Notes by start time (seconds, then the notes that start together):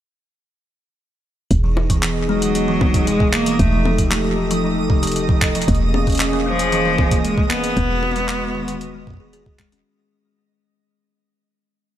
1.51 E1 B3 D#4 G#4 D#5, kick, closed hi-hat
1.64 E3
1.77 high tom
1.90 E3, kick, closed hi-hat
2.03 E3, clap, closed hi-hat
2.29 F#3 G#3
2.42 E3, closed hi-hat
2.55 closed hi-hat
2.68 E3
2.81 E3, kick, high tom
2.94 kick, closed hi-hat
3.07 B2 G#3, closed hi-hat
3.20 B2, kick
3.33 A#3, clap
3.46 E3, closed hi-hat
3.59 E1 A3 G4 A4, kick, closed hi-hat
3.72 F3
3.85 F3, high tom
3.98 kick, closed hi-hat
4.11 A3, clap, closed hi-hat
4.25 F3
4.51 F3, closed hi-hat
4.64 F3
4.90 C3, kick
5.03 C3, closed hi-hat
5.07 closed hi-hat
5.12 closed hi-hat
5.16 closed hi-hat
5.29 F3, kick
5.42 kick, clap
5.55 F3, closed hi-hat
5.62 closed hi-hat
5.68 E1 A#3 C#4 G#4, kick, closed hi-hat
5.75 closed hi-hat
5.94 C#4, high tom
6.07 A#3, kick, closed hi-hat
6.10 closed hi-hat
6.12 closed hi-hat
6.15 closed hi-hat
6.18 clap, closed hi-hat
6.33 A#3
6.46 F3 A#3
6.59 closed hi-hat
6.72 E3, closed hi-hat
6.85 E3
6.98 kick, high tom
7.11 A#3, kick, closed hi-hat
7.24 G#3, closed hi-hat
7.38 A#3, kick
7.50 A#3 B3, clap
7.64 closed hi-hat
7.77 E1 G#3 B3 F#4, kick, closed hi-hat
7.90 G#3
8.03 high tom
8.11 high tom
8.16 G#3, closed hi-hat
8.20 high tom
8.29 G#3, clap, closed hi-hat
8.55 D#3
8.68 D#3, closed hi-hat
8.81 closed hi-hat
8.94 G#3
9.07 kick
9.10 kick
9.14 kick
9.17 G#4, kick
9.33 G#4, closed hi-hat
9.46 kick
9.59 G#3, kick, clap
9.72 C#4, closed hi-hat